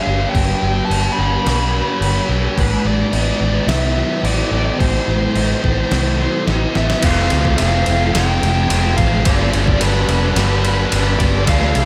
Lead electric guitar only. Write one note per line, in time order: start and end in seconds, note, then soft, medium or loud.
0.03 0.34 F5 medium
0.29 0.85 G5 loud
0.85 1.12 A5 loud
1.13 2.23 B5 loud
2.60 2.87 B4 medium
2.87 3.72 D5 medium
3.68 4.26 E5 loud
4.25 4.77 D5 loud
4.80 6.43 C5 medium
6.77 7.05 E5 medium
7.04 7.57 F5 loud
7.58 8.13 F5 loud
8.13 9.00 G5 medium
8.97 9.25 F5 loud
9.26 9.83 D5 loud
9.81 11.24 B4 loud
11.19 11.48 D5 medium
11.49 11.85 F5 loud